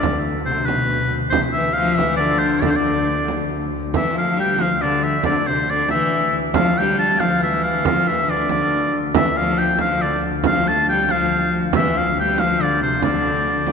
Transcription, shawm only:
Already playing: D5
0.46 C5
0.66 B4
1.30 C5
1.53 E5
1.74 F5
1.96 E5
2.17 D5
2.39 C5
2.62 D5
2.71 C5
2.76 D5
3.96 E5
4.18 F5
4.40 G5
4.62 F5
4.82 D5
5.03 E5
5.25 D5
5.47 C5
5.70 D5
5.91 E5
6.55 F5
6.77 G5
6.99 A5
7.19 F5
7.43 E5
7.64 F5
7.86 F5
8.08 E5
8.30 D5
8.50 D5
9.15 E5
9.37 F5
9.58 G5
9.81 F5
10.01 D5
10.47 F5
10.68 A5
10.89 G5
11.11 F5
11.76 E5
11.98 F5
12.20 G5
12.39 F5
12.62 D5
12.83 C5
13.04 D5

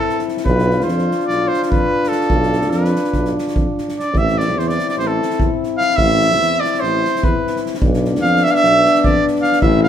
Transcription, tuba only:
0.45 B1
0.87 F2
1.28 B1
1.70 F2
2.30 B1
2.71 F2
3.13 B1
3.54 F2
4.13 A1
4.56 E2
4.97 A1
5.39 E2
5.98 A1
6.39 E2
6.82 A1
7.23 E2
7.82 B1
8.21 F2
8.63 B1
9.05 F2
9.62 A1

